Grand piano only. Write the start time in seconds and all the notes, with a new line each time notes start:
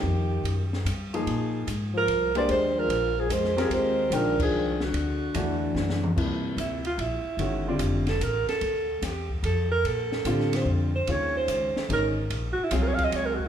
1.13 F3 A#3 D#4 G#4
2.35 G#3 D4 G4 C5
3.57 C4 F4 G4 A#4
4.12 D#3 G#3 D4 G5
5.35 E3 A3 D4 F#4
6.16 C3 F3 A#3 E4
7.39 D#3 G#3 C#4 F#4
7.67 D3 G3 C4 F4
10.26 D3 G3 C4 F4
11.08 D#3 G#3 C#4 F4
11.89 D#3 G#3 C#4 D#4
12.71 F#3 C4 F4 G#4